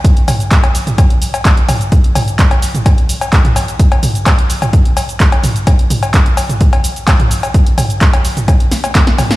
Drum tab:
HH |xxoxxxoxxxoxxxox|xxoxxxoxxxoxxxox|xxoxxxoxxxoxxxox|xxoxxxoxxxoxxxox|
SH |x-xxx-xxx-xxx-xx|x-xxx-xxx-xxx-xx|x-xxx-xxx-xxx-xx|x-xxx-xxx-xxx-xx|
CB |--x--x--x--x--x-|--x--x--x--x--x-|-x--x--x--x--x--|x--x--x--x--x--x|
CP |----x-------x---|----x-------x---|----x-------x---|----x-------x---|
SD |----------------|----------------|----------------|----------------|
T2 |--o----o------o-|--o----o-----o--|--o----o------o-|--o----o-----o--|
BD |o---o---o---o---|o---o---o---o---|o---o---o---o---|o---o---o---o---|

HH |xxoxxxoxxxoxxxox|
SH |x-xxx-xxx-xxx-xx|
CB |--x--x--x--x--x-|
CP |----x-------x---|
SD |----------o-oo-o|
T2 |--o----o------o-|
BD |o---o---o---o---|